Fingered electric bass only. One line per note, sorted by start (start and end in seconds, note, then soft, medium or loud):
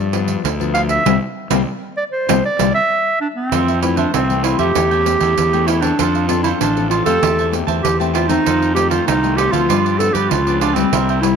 0.00 0.35 G2 medium
0.44 0.96 D2 medium
1.06 1.17 C2 medium
1.50 1.62 C2 medium
2.29 2.40 C2 medium
2.59 2.71 C2 medium
3.52 4.04 F2 medium
4.14 4.53 C2 medium
4.59 4.73 F2 medium
4.75 5.15 E2 medium
5.21 5.35 E2 medium
5.37 5.90 E2 medium
6.00 6.52 F2 medium
6.61 7.00 A1 medium
7.06 7.20 F2 medium
7.22 7.62 E2 medium
7.67 7.81 E2 medium
7.84 8.37 E2 medium
8.46 8.99 F2 medium
9.08 9.47 C2 medium
9.53 9.66 D2 medium
9.69 10.09 G2 medium
10.14 10.28 G2 medium
10.31 10.84 C#2 medium
10.92 11.36 C2 medium